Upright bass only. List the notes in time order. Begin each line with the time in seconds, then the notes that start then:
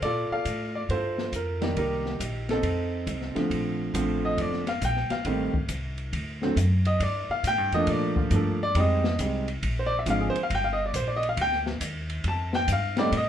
0.02 A#2
0.31 muted upright bass stroke
0.45 A2
0.89 G2
1.32 F2
1.77 C2
2.20 A#1
2.63 F2
3.07 C2
3.36 muted upright bass stroke
3.51 A#1
3.94 A1
4.38 F1
4.82 A#1
5.10 muted upright bass stroke
5.25 A1
5.54 muted upright bass stroke
5.69 C2
6.13 D2
6.56 F#2
7.00 G2
7.29 muted upright bass stroke
7.44 A2
7.58 G2
7.72 F2
7.87 A#2
8.31 G2
8.75 F2
9.19 C2
9.63 A#1
10.06 G#1
10.35 muted upright bass stroke
10.50 G1
10.94 A#1
11.37 D2
11.81 D#2
12.24 F2
12.68 G2
13.12 A2